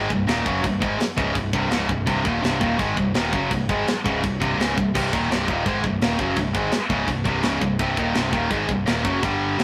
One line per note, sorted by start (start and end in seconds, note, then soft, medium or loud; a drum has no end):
0.10 0.27 C1 medium
0.10 0.25 C2 medium
0.10 0.25 G2 medium
0.10 kick medium
0.27 0.45 D#1 medium
0.27 0.45 D#2 medium
0.27 0.45 A#2 loud
0.27 0.46 D#3 loud
0.27 snare loud
0.27 china medium
0.45 0.63 F#1 loud
0.45 0.63 F#2 medium
0.45 0.63 C#3 medium
0.45 0.64 F#3 loud
0.45 kick loud
0.63 0.80 C1 medium
0.63 0.78 C2 medium
0.63 0.78 G2 medium
0.63 kick loud
0.63 china medium
0.80 0.99 G#1 loud
0.80 0.99 G#2 loud
0.80 0.99 D#3 loud
0.80 0.99 G#3 loud
0.80 kick loud
0.99 muted distorted electric guitar stroke medium
0.99 muted picked electric bass stroke soft
0.99 snare loud
0.99 china medium
1.17 1.34 C#1 medium
1.17 1.34 C#2 loud
1.17 1.35 G#2 loud
1.17 1.35 C#3 loud
1.17 kick loud
1.35 1.52 C1 medium
1.35 1.50 C2 medium
1.35 1.50 G2 medium
1.35 kick loud
1.35 china medium
1.53 1.70 C1 loud
1.53 1.70 C2 loud
1.53 1.71 G2 loud
1.53 1.71 C3 loud
1.53 kick loud
1.71 1.88 C#1 medium
1.71 1.89 C#2 loud
1.71 1.89 G#2 medium
1.71 1.89 C#3 loud
1.71 snare loud
1.71 china medium
1.89 2.06 C1 medium
1.89 2.04 C2 medium
1.89 2.04 G2 medium
1.89 kick medium
2.06 2.24 C1 loud
2.06 2.24 C2 loud
2.06 2.25 G2 loud
2.06 2.25 C3 loud
2.06 kick loud
2.06 china medium
2.25 2.42 D#1 loud
2.25 2.41 D#2 loud
2.25 2.42 A#2 loud
2.25 2.43 D#3 loud
2.25 kick loud
2.42 2.61 C1 loud
2.42 2.59 C2 medium
2.42 2.60 G2 loud
2.42 2.60 C3 loud
2.42 snare loud
2.42 china medium
2.59 2.78 D#1 medium
2.59 2.77 D#2 medium
2.59 2.78 A#2 loud
2.59 2.77 D#3 loud
2.59 kick loud
2.77 2.96 G#1 medium
2.77 2.96 G#2 loud
2.77 2.96 D#3 medium
2.77 2.96 G#3 loud
2.77 kick loud
2.77 china medium
2.97 3.14 C1 medium
2.97 3.11 C2 medium
2.97 3.11 G2 medium
2.97 kick medium
3.14 3.32 D#1 medium
3.14 3.32 D#2 medium
3.14 3.32 A#2 loud
3.14 3.33 D#3 loud
3.14 snare loud
3.14 china medium
3.33 3.50 F#1 medium
3.33 3.50 F#2 medium
3.33 3.51 C#3 loud
3.33 3.51 F#3 loud
3.33 kick loud
3.51 3.67 C1 medium
3.51 3.65 C2 medium
3.51 3.66 G2 medium
3.51 kick loud
3.51 china medium
3.69 3.86 G#1 loud
3.69 3.86 G#2 loud
3.69 3.87 D#3 loud
3.69 3.87 G#3 loud
3.69 kick loud
3.87 muted picked electric bass stroke soft
3.87 muted distorted electric guitar stroke medium
3.87 snare loud
3.87 china medium
4.04 4.22 C#1 medium
4.04 4.22 C#2 medium
4.04 4.22 G#2 medium
4.04 4.22 C#3 loud
4.04 kick loud
4.23 4.40 C1 medium
4.23 4.37 C2 medium
4.23 4.37 G2 medium
4.23 kick medium
4.23 china medium
4.40 4.57 C1 loud
4.40 4.58 C2 loud
4.40 4.58 G2 medium
4.40 4.58 C3 loud
4.40 kick loud
4.57 4.74 C#1 medium
4.57 4.76 C#2 medium
4.57 4.76 G#2 loud
4.57 4.76 C#3 loud
4.57 snare loud
4.57 china medium
4.76 4.93 C1 medium
4.76 4.91 C2 medium
4.76 4.91 G2 medium
4.76 kick loud
4.95 5.11 C1 loud
4.95 5.12 C2 medium
4.95 5.12 G2 loud
4.95 5.12 C3 loud
4.95 kick loud
4.95 china medium
4.95 crash loud
5.13 5.29 D#1 loud
5.13 5.30 D#2 medium
5.13 5.30 A#2 loud
5.13 5.30 D#3 loud
5.13 kick loud
5.30 5.46 C1 loud
5.30 5.47 C2 medium
5.30 5.48 G2 loud
5.30 5.48 C3 loud
5.30 snare loud
5.30 china medium
5.47 5.64 D#1 medium
5.47 5.66 D#2 loud
5.47 5.66 A#2 loud
5.47 5.66 D#3 loud
5.47 kick loud
5.66 5.82 G#1 medium
5.66 5.83 G#2 loud
5.66 5.84 D#3 loud
5.66 5.84 G#3 loud
5.66 kick loud
5.66 china medium
5.84 6.00 C1 medium
5.84 5.98 C2 medium
5.84 5.98 G2 medium
5.84 kick medium
6.01 6.18 D#1 medium
6.01 6.19 D#2 medium
6.01 6.19 A#2 medium
6.01 6.20 D#3 loud
6.01 snare loud
6.01 china medium
6.19 6.36 F#1 loud
6.19 6.36 F#2 medium
6.19 6.37 C#3 loud
6.19 6.38 F#3 loud
6.19 kick loud
6.36 6.54 C1 medium
6.36 6.51 C2 medium
6.36 6.52 G2 medium
6.36 kick loud
6.36 china medium
6.54 6.71 G#1 loud
6.54 6.72 G#2 loud
6.54 6.72 D#3 loud
6.54 6.72 G#3 loud
6.54 kick loud
6.72 muted distorted electric guitar stroke medium
6.72 muted picked electric bass stroke soft
6.72 snare loud
6.72 china medium
6.89 7.06 C#1 loud
6.89 7.07 C#2 loud
6.89 7.07 G#2 loud
6.89 7.08 C#3 loud
6.89 kick loud
7.07 7.24 C1 medium
7.07 7.22 C2 medium
7.07 7.22 G2 medium
7.07 kick medium
7.07 china medium
7.24 7.43 C1 medium
7.24 7.42 C2 medium
7.24 7.43 G2 loud
7.24 7.43 C3 loud
7.24 kick loud
7.43 7.61 C#1 medium
7.43 7.60 C#2 medium
7.43 7.61 G#2 loud
7.43 7.61 C#3 loud
7.43 snare loud
7.43 china medium
7.61 7.78 C1 medium
7.61 7.76 C2 medium
7.61 7.76 G2 medium
7.61 kick loud
7.79 7.96 C1 loud
7.79 7.97 C2 loud
7.79 7.97 G2 loud
7.79 7.97 C3 loud
7.79 kick loud
7.79 china medium
7.97 8.14 D#1 loud
7.97 8.14 D#2 loud
7.97 8.15 A#2 loud
7.97 8.15 D#3 loud
7.97 kick loud
8.15 8.32 C1 loud
8.15 8.32 C2 medium
8.15 8.32 G2 loud
8.15 8.32 C3 loud
8.15 snare loud
8.15 china medium
8.32 8.50 D#1 medium
8.32 8.50 D#2 medium
8.32 8.50 A#2 loud
8.32 8.50 D#3 loud
8.32 kick loud
8.50 8.67 G#1 medium
8.50 8.68 G#2 medium
8.50 8.68 D#3 loud
8.50 8.69 G#3 loud
8.50 kick loud
8.50 china medium
8.68 8.85 C1 medium
8.68 8.83 C2 medium
8.68 8.83 G2 medium
8.68 kick loud
8.86 9.04 D#1 medium
8.86 9.03 D#2 loud
8.86 9.04 A#2 loud
8.86 9.04 D#3 loud
8.86 snare loud
8.86 china medium
9.04 9.22 F#1 medium
9.04 9.22 F#2 medium
9.04 9.22 C#3 medium
9.04 9.22 F#3 loud
9.04 kick loud
9.22 9.56 G1 medium
9.22 9.57 G2 loud
9.22 9.58 D3 loud
9.22 9.58 G3 loud
9.22 kick loud
9.22 china medium
9.58 9.64 C1 medium
9.58 9.64 C2 loud
9.58 9.64 G2 medium
9.58 9.64 C3 medium
9.58 snare loud
9.58 china medium